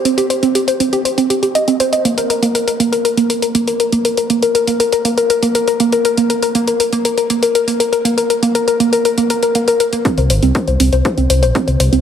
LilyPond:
<<
  \new Staff \with { instrumentName = "Synth pluck" } { \time 4/4 \key c \minor \tempo 4 = 120 c'16 g'16 c''16 c'16 g'16 c''16 c'16 g'16 c''16 c'16 g'16 g'16 ees''16 c'16 c''16 ees''16 | bes16 bes'16 bes'16 bes16 bes'16 bes'16 bes16 bes'16 bes'16 bes16 bes'16 bes'16 bes16 bes'16 bes'16 bes16 | bes'16 bes'16 bes16 bes'16 bes'16 bes16 bes'16 bes'16 bes16 bes'16 bes'16 bes16 bes'16 bes'16 bes16 bes'16 | bes'16 bes16 bes'16 bes'16 bes16 bes'16 bes'16 bes16 bes'16 bes'16 bes16 bes'16 bes'16 bes16 bes'16 bes'16 |
bes16 bes'16 bes'16 bes16 bes'16 bes'16 bes16 bes'16 bes'16 bes16 bes'16 bes'16 bes16 bes'16 bes'16 bes16 | c'16 c''16 c''16 c'16 c''16 c''16 c'16 c''16 c''16 c'16 c''16 c''16 c'16 c''16 c''16 c'16 | }
  \new Staff \with { instrumentName = "Detuned saw bass" } { \clef bass \time 4/4 \key c \minor r1 | r1 | r1 | r1 |
r1 | r16 c,16 g,,16 c,16 r16 c,16 c,16 c,16 r16 c,16 c,16 bes,,16 r16 c,16 c,16 c,16 | }
  \new DrumStaff \with { instrumentName = "Drums" } \drummode { \time 4/4 hh16 hh16 hh16 hh16 hh16 hh16 hh16 hh16 hh16 hh16 hh16 hh16 hh16 hh16 hh16 hh16 | hh16 hh16 hh16 hh16 hh16 hh16 hh16 hh16 hh16 hh16 hh16 hh16 hh16 hh16 hh16 hh16 | hh16 hh16 hh16 hh16 hh16 hh16 hh16 hh16 hh16 hh16 hh16 hh16 hh16 hh16 hh16 hh16 | hh16 hh16 hh16 hh16 hh16 hh16 hh16 hh16 hh16 hh16 hh16 hh16 hh16 hh16 hh16 hh16 |
hh16 hh16 hh16 hh16 hh16 hh16 hh16 hh16 hh16 hh16 hh16 hh16 hh16 hh16 hh16 hh16 | <hh bd>16 hh16 hho16 hh16 <hh bd>16 hh16 hho16 hh16 <hh bd>16 hh16 hho16 hh16 <hh bd>16 hh16 hho16 hh16 | }
>>